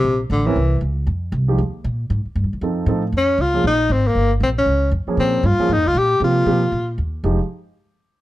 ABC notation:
X:1
M:4/4
L:1/8
Q:"Swing" 1/4=234
K:Fm
V:1 name="Tenor saxophone"
C, z =D, =E,3 z2 | z8 | z8 | D2 F2 E2 C B,- |
B, z C D3 z2 | C2 F2 E F G2 | F6 z2 | z8 |]
V:2 name="Grand piano"
z3 [=E,CDB] z4 | z3 [F,A,EG] z4 | z4 [F,CE=A]2 [F,CEA] z | z3 [F,B,DA] z4 |
z6 z [F,B,DA]- | [F,B,DA]2 z [F,B,DA] z4 | [F,B,CG]2 [F,B,CG] z4 z | [F,A,EG] z6 z |]
V:3 name="Upright bass" clef=bass
B,,,2 =A,,,2 C,,2 D,,2 | F,,2 C,,2 E,,2 B,,2 | A,, z (3G,, F,, E,, F,,2 =A,,2 | F,,2 D,,2 B,,,2 A,,,2 |
G,,,2 B,,,2 D,,2 F,, z | B,,2 G,, z (3A,, F,, D,, B,,2 | C,2 =B,,2 _B,,2 E,,2 | F,,, z6 z |]